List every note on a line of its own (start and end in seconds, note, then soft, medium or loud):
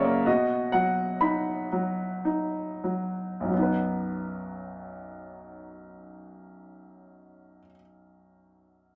0.00 0.23 F#2 medium
0.00 0.26 C#3 medium
0.00 0.24 F#3 medium
0.00 0.04 A#3 medium
0.00 0.28 C#5 medium
0.00 0.24 D5 medium
0.00 0.29 E5 medium
0.00 0.28 F#5 medium
0.00 0.28 A#5 medium
0.04 0.26 A#3 medium
0.25 3.48 B2 soft
0.25 1.67 F#4 soft
0.25 0.70 D#5 medium
0.72 1.71 F#3 soft
0.72 1.22 F#5 medium
1.21 2.23 D#4 soft
1.21 2.22 B5 medium
1.72 2.82 F#3 soft
2.25 3.47 D#4 soft
2.84 3.48 F#3 soft
3.40 7.57 B1 soft
3.40 7.61 F#2 soft
3.49 7.66 F#3 soft
3.49 7.70 B3 soft
3.58 7.75 D#4 soft
3.62 7.79 B4 soft